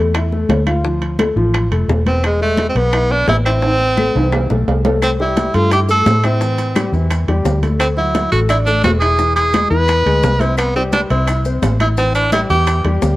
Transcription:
Already playing: E2 A3 A4
0.14 E4 E5, high bongo, high conga, high timbale, claves
0.32 A3 A4, high bongo, high conga
0.49 D2, high bongo, low bongo, high conga, high timbale, low timbale
0.67 F4 F5, high conga, high timbale, claves
0.84 F3 F4, high bongo
1.02 high bongo, high conga, high timbale
1.19 A3 A4, high bongo, high conga, high timbale, low timbale, claves
1.36 A1 F3 F4, high bongo
1.54 high bongo, high conga, high timbale, claves
1.71 F1 A3 A4, high bongo, high conga, high timbale
1.88 E1, high bongo, low bongo, high conga, low timbale
2.06 B3 C4 B4, high conga, high timbale
2.23 G#3, high bongo, high conga, high timbale, claves
2.40 G#3 A3 G#4, high bongo, high conga
2.57 high bongo, high conga, high timbale, low timbale
2.69 C4
2.75 B1 B3 B4, high bongo, high conga, high timbale
2.93 E4 E5, high bongo, high conga, high timbale, claves
3.10 B3 D4 B4, high bongo, high conga
3.27 A1 E4, high bongo, low bongo, high conga, high timbale, low timbale
3.45 C4 E4 E5, high timbale, claves
3.62 E3 E4, high bongo, high conga, high timbale
3.80 high bongo, high conga
3.97 A3 A4, high bongo, high conga, claves
4.15 C2 E3 E4, high bongo, high timbale
4.32 high bongo, high conga, low timbale, claves
4.50 B1 A3 A4, high bongo, high conga, low timbale
4.68 C2, high conga, low timbale
4.85 A3 A4, low bongo, high conga, low timbale
5.02 C4, high bongo, high conga, high timbale, claves, maracas
5.20 G3 E4 G4, high bongo, high conga
5.37 high bongo, high conga, high timbale, low timbale, maracas
5.54 G2 A3 F4 A4, high bongo, high conga, high timbale, maracas
5.71 E4 G4 E5, high bongo, high conga, high timbale, claves, maracas
5.89 A3 A4, high bongo, high conga, maracas
6.06 A2, high bongo, low bongo, high conga, high timbale, low timbale, maracas
6.24 C4 E4 E5, high conga, high timbale, claves, maracas
6.41 E3 E4, high bongo, high conga, maracas
6.58 high bongo, high conga, high timbale, maracas
6.76 G3 G4, high bongo, high conga, high timbale, low timbale, claves, maracas
6.92 E2 E3 E4, high bongo, maracas
7.10 high bongo, high conga, high timbale, claves, maracas
7.28 E2 G3 G4, high bongo, high conga, high timbale
7.45 D2, high bongo, low bongo, high conga, low timbale, maracas
7.62 A3 A4, high conga, high timbale, maracas
7.80 C4, high bongo, high conga, high timbale, claves, maracas
7.97 F#3 E4 F#4, high bongo, high conga
8.15 high bongo, high conga, high timbale, low timbale, maracas
8.32 A1 A3 F#4 A4, high bongo, high conga, high timbale, maracas
8.49 D4 E4 D5, high bongo, high conga, high timbale, claves, maracas
8.66 A3 D4 A4, high bongo, high conga, maracas
8.84 E1 F#4, high bongo, low bongo, high conga, high timbale, low timbale, maracas
9.00 E4 G#4 E5, high timbale, claves, maracas
9.19 E3 E4, high bongo, high conga, maracas
9.36 G#4, high bongo, high conga, high timbale, maracas
9.53 G#3 G#4, high bongo, high conga, high timbale, low timbale, claves, maracas
9.70 E2 E3 E4 B4, high bongo, maracas
9.88 high bongo, high conga, high timbale, claves, maracas
10.06 D2 G#3 G#4, high bongo, high conga, high timbale
10.23 C2, high bongo, low bongo, high conga, low timbale, maracas
10.40 C4 E4 C5, high conga, high timbale, maracas
10.58 B3, high bongo, high conga, high timbale, claves, maracas
10.76 G3 C4 G4, high bongo, high conga
10.93 D4, high bongo, high conga, high timbale, low timbale, maracas
11.10 C2 C4 E4 C5, high bongo, high conga, high timbale, maracas
11.27 E4 E5, high bongo, high conga, high timbale, claves, maracas
11.45 C4 C5, high bongo, high conga, maracas
11.62 A1, high bongo, low bongo, high conga, high timbale, low timbale, maracas
11.80 E4 E5, high conga, high timbale, claves, maracas
11.97 E3 C4 E4, high bongo, high conga, maracas
12.15 D4, high bongo, high conga, high timbale, maracas
12.32 G3 E4 G4, high bongo, high conga, high timbale, low timbale, claves, maracas
12.49 E2 E3 E4 G4, high bongo, maracas
12.67 high bongo, high conga, high timbale, claves, maracas
12.84 E2 G3 G4, high bongo, high conga, high timbale
13.02 D2, high bongo, low bongo, high conga, low timbale, maracas

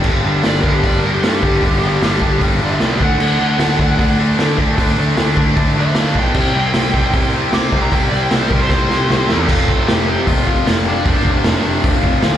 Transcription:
0.04 G1 G2 D3 G3 B3, kick, crash
0.08 D4
0.25 G1 G2 D3 G3 B3 D4
0.44 G1 G2 D3 G3 B3 D4 D5, snare, open hi-hat
0.61 G1 G2 D3 A#4, kick
0.65 G3 B3 D4
0.74 G4
0.83 G1 G2 D3 G3 B3 D4 D5, kick, open hi-hat
0.99 A#4
1.04 G2 D3 G3 B3 D4
1.14 G4
1.21 G2 D3 G3 B3, snare, open hi-hat
1.25 D4 G4
1.43 G1 G2 D3 G3 B3 D4, kick
1.63 G1 G2 D3 G3 B3 D4, kick, open hi-hat
1.82 G1 G2 D3 G3 B3 D4
2.02 G1 G2 D3 G3 B3 D4, snare, open hi-hat
2.22 G1 G2 D3 G3 B3 D4, kick
2.41 G1 G2 D3 G3 B3 D4, kick, open hi-hat
2.61 G1 G2 D3 G3 B3 D4 G4 E5
2.80 C2 G2 D3 G3 B3 D4, snare, open hi-hat
2.85 B4 G5
3.00 D2 D3 F#3 A3 D4 F#5, kick
3.18 D2 D3 F#3 A3 D4, crash
3.39 D2 D3 F#3 A3 D4
3.58 D2 D3 F#3 A3 D4, snare, open hi-hat
3.79 D2 D3 F#3 A3 D4, kick
3.99 D2 D3 F#3 A3 D4, kick, open hi-hat
4.19 D3 F#3 A3 D4
4.39 D3 F#3 A3 D4, snare, open hi-hat
4.57 D2 D3 F#3 A3 D4, kick
4.78 D2 D3 F#3 A3 D4, kick, open hi-hat
4.98 D2 D3 F#3 A3 D4
5.17 D2 D3 F#3 A3 D4, snare, open hi-hat
5.37 D2 D3 F#3 A3 D4, kick
5.57 D2 D3 F#3 A3 D4, kick, open hi-hat
5.75 D2 D3 F#3 D4 C5
5.79 A3 D4 E5
5.95 D2 D3 A3, snare, open hi-hat
5.99 F#3 A3 D4 A4 F5
6.15 B1 D3 F#3 A3 D4, kick
6.19 G5
6.34 C2 C3 G3 C4 E4, kick, crash
6.54 C2 C3 G3 C4 E4
6.74 C2 C3 G3 C4 E4, snare, open hi-hat
6.94 C2 C3 G3 C4 E4, kick
7.13 C2 C3 G3 C4 E4, kick, open hi-hat
7.34 C3 G3 C4 E4
7.52 C3 G3 C4 E4 D6, snare, open hi-hat
7.72 C2 C3 G3 C4 E4, kick
7.82 A#5
7.91 C2 C3 G3 C4 E4 G5, kick, open hi-hat
8.09 C2 C3 G3 C4 E4 D5
8.23 G5
8.30 C2 C3 G3 C4 E4, snare, open hi-hat
8.36 C5
8.48 C2 C3 G3 C4 E4 A#4, kick
8.61 C5
8.69 C2 C3 G3 C4 E4, kick, snare
8.90 C2 C3 G3 C4 E4, snare
9.09 C2 C3 G3 C4 E4, snare
9.29 E2 C3 G3 C4 E4, snare
9.47 F1 F2 C3 F3 A3 C4 A4, kick, crash
9.51 F4
9.68 kick
9.86 F1 G4, snare, open hi-hat
10.09 G4
10.27 F1 F2 C3 F3 F4, kick, open hi-hat
10.46 F2 C3 F3 F4, kick
10.66 F1 F2 C3 F3 F4, snare, open hi-hat
10.88 D4
11.04 F1 F2 C3 F3 A3 C4 F4, kick, open hi-hat
11.25 F1, kick
11.44 F1, snare, open hi-hat
11.65 F1
11.83 F1 F2 C3 F3, kick, open hi-hat
12.02 F1 F2 C3 F3, kick
12.22 D2 F2 C3 F3, snare, open hi-hat

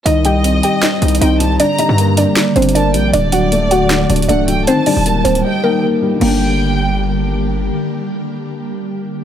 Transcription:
0.06 C2 D#3 G3 C4 D#4 G4 D#5, closed hi-hat
0.25 G3 G4 G5, closed hi-hat
0.44 C4, closed hi-hat
0.63 G4 G5, closed hi-hat
0.83 D#5, snare, clap, closed hi-hat
1.02 C2 D#4, closed hi-hat
1.08 closed hi-hat
1.15 closed hi-hat
1.21 C2 C4 D#4 D#5 G5, closed hi-hat
1.40 G3 A5, closed hi-hat
1.60 D3 A#3 D4 D5 A#5, closed hi-hat
1.79 G3 D#4 D#5, closed hi-hat
1.89 G2
1.98 A#3, closed hi-hat
2.17 D4 D5, closed hi-hat
2.37 D5, snare, clap, closed hi-hat
2.56 G1 C4 D4 C5, closed hi-hat
2.62 closed hi-hat
2.69 closed hi-hat
2.75 A#3 D4 D5 A5, closed hi-hat
2.94 A#1 G3 G5, closed hi-hat
3.13 D1 D3 F#3 A3 D4 F#4 D5, closed hi-hat
3.32 F#3 F#4 F#5, closed hi-hat
3.52 A3, closed hi-hat
3.71 F#4 F#5, closed hi-hat
3.90 D5, snare, clap, closed hi-hat
4.10 D1 D4, closed hi-hat
4.16 closed hi-hat
4.22 closed hi-hat
4.29 C1 A3 D4 D5 F#5, closed hi-hat
4.48 F#3 G5, closed hi-hat
4.67 D#3 G3 A#3 C4 G4 C5 A5, closed hi-hat
4.86 G3 D4 D5, open hi-hat
4.97 D#1
5.06 A#3, closed hi-hat
5.25 D1 C4 C5, closed hi-hat
5.35 closed hi-hat
5.44 D#5 G5
5.64 A#3 D#4 A#4
5.83 A#3
6.02 G3
6.15 D3
6.19 G1 D3 G3 A#3 G4 G5, crash
6.27 D4

